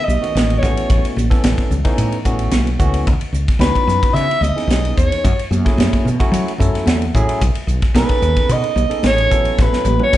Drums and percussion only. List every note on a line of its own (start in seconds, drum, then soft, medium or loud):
0.09 hi-hat pedal medium
0.09 high conga medium
0.24 ride medium
0.36 snare loud
0.36 hi-hat pedal medium
0.36 ride medium
0.36 high conga medium
0.50 ride medium
0.63 kick medium
0.63 snare soft
0.63 hi-hat pedal medium
0.77 ride medium
0.90 kick loud
0.90 hi-hat pedal medium
0.90 ride medium
0.90 muted conga soft
1.05 ride medium
1.16 hi-hat pedal medium
1.16 muted conga soft
1.16 high conga medium
1.31 kick medium
1.31 snare soft
1.31 ride medium
1.44 snare loud
1.44 hi-hat pedal medium
1.44 ride medium
1.44 high conga medium
1.58 kick medium
1.58 snare soft
1.58 ride medium
1.71 hi-hat pedal medium
1.71 muted conga soft
1.71 low conga medium
1.85 kick medium
1.85 snare soft
1.85 ride medium
1.98 hi-hat pedal medium
1.98 ride medium
1.98 muted conga soft
2.12 ride medium
2.25 kick medium
2.25 hi-hat pedal medium
2.25 low conga medium
2.39 ride medium
2.51 snare loud
2.51 hi-hat pedal medium
2.51 ride medium
2.51 high conga medium
2.67 ride medium
2.79 kick medium
2.79 hi-hat pedal medium
2.94 ride medium
3.06 kick medium
3.06 hi-hat pedal medium
3.06 ride medium
3.06 muted conga soft
3.21 ride medium
3.33 hi-hat pedal medium
3.33 muted conga soft
3.48 kick medium
3.48 snare soft
3.48 ride medium
3.59 snare loud
3.59 hi-hat pedal medium
3.59 ride medium
3.59 high conga medium
3.75 kick medium
3.75 ride medium
3.88 snare soft
3.88 hi-hat pedal medium
3.88 muted conga soft
4.03 kick medium
4.03 ride medium
4.16 hi-hat pedal medium
4.16 ride medium
4.16 muted conga soft
4.31 ride medium
4.43 hi-hat pedal medium
4.43 high conga medium
4.58 snare soft
4.58 ride medium
4.69 snare loud
4.69 hi-hat pedal medium
4.69 ride medium
4.69 high conga medium
4.85 ride medium
4.98 kick medium
4.98 hi-hat pedal medium
5.12 ride medium
5.24 kick loud
5.24 hi-hat pedal medium
5.24 ride medium
5.24 muted conga soft
5.39 ride medium
5.51 hi-hat pedal medium
5.51 muted conga soft
5.51 high conga medium
5.66 kick medium
5.66 snare soft
5.66 ride medium
5.78 snare loud
5.78 hi-hat pedal medium
5.78 ride medium
5.78 high conga medium
5.93 kick medium
5.93 snare soft
5.93 ride medium
6.06 hi-hat pedal medium
6.06 muted conga soft
6.06 low conga medium
6.20 kick medium
6.20 ride medium
6.32 hi-hat pedal medium
6.32 ride medium
6.32 muted conga soft
6.48 ride medium
6.58 kick medium
6.58 hi-hat pedal medium
6.58 low conga medium
6.75 snare soft
6.75 ride medium
6.86 snare loud
6.86 hi-hat pedal medium
6.86 ride medium
6.86 high conga medium
7.02 ride medium
7.15 kick medium
7.15 hi-hat pedal medium
7.29 ride medium
7.40 kick loud
7.40 hi-hat pedal medium
7.40 ride medium
7.40 muted conga soft
7.55 ride medium
7.68 hi-hat pedal medium
7.68 muted conga soft
7.82 kick medium
7.82 snare soft
7.82 ride medium
7.95 snare loud
7.95 hi-hat pedal medium
7.95 ride medium
7.95 high conga medium
8.09 kick medium
8.09 snare soft
8.09 ride medium
8.22 hi-hat pedal medium
8.22 muted conga soft
8.37 kick medium
8.37 ride medium
8.48 hi-hat pedal medium
8.48 ride medium
8.48 muted conga soft
8.64 ride medium
8.76 hi-hat pedal medium
8.76 high conga medium
8.91 ride medium
9.03 snare loud
9.03 hi-hat pedal medium
9.03 ride medium
9.03 high conga medium
9.18 ride medium
9.31 kick medium
9.31 hi-hat pedal medium
9.45 ride medium
9.58 kick loud
9.58 snare medium
9.58 hi-hat pedal medium
9.58 muted conga soft
9.73 snare medium
9.85 hi-hat pedal medium
9.85 high tom medium
9.85 muted conga soft
9.85 high conga medium
10.00 high tom medium
10.13 kick medium
10.13 hi-hat pedal medium
10.13 high conga medium